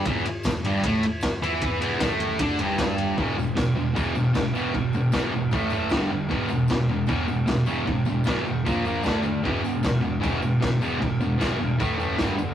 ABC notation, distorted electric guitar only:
X:1
M:4/4
L:1/8
Q:1/4=153
K:Alyd
V:1 name="Distorted electric guitar" clef=bass
[E,,E,] z E,, [=G,,=G,] [A,,A,] z2 [E,E]- | [E,E] [E,,E,] [A,,A,]2 [=D,=D] [=G,,=G,]3 | [E,,B,,E,] [E,,B,,] [E,,B,,] [E,,B,,] [E,,B,,E,] [E,,B,,] [E,,B,,] [E,,B,,E,] | [E,,B,,] [E,,B,,] [E,,B,,E,] [E,,B,,] [A,,E,A,] [A,,E,A,] [=G,,=D,=G,] [G,,D,] |
[E,,B,,E,] [E,,B,,] [E,,B,,] [E,,B,,] [E,,B,,E,] [E,,B,,] [E,,B,,] [E,,B,,E,] | [E,,B,,] [E,,B,,] [E,,B,,E,] [E,,B,,] [^A,,^E,^A,] [A,,E,A,] [=D,=A,=D] [D,A,] | [E,,B,,E,] [E,,B,,] [E,,B,,] [E,,B,,] [E,,B,,E,] [E,,B,,] [E,,B,,] [E,,B,,E,] | [E,,B,,] [E,,B,,] [E,,B,,E,] [E,,B,,] [A,,E,A,] [A,,E,A,] [=G,,=D,=G,] [G,,D,] |]